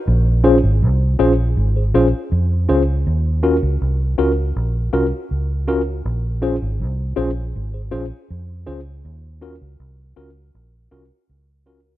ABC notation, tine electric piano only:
X:1
M:4/4
L:1/16
Q:1/4=80
K:Bbm
V:1 name="Tine electric piano"
z2 [DFAc] z3 [DFAc] z2 [Ac] [DFAc] z3 [DFAc] z | z2 [DFGB] z3 [DFGB] z3 [DFGB] z3 [DFGB] z | z2 [DFAc] z3 [DFAc] z2 [Ac] [DFAc] z3 [DFAc] z | z2 [DFGB] z3 [DFGB] z3 [DFGB] z3 [DFGB] [GB] |]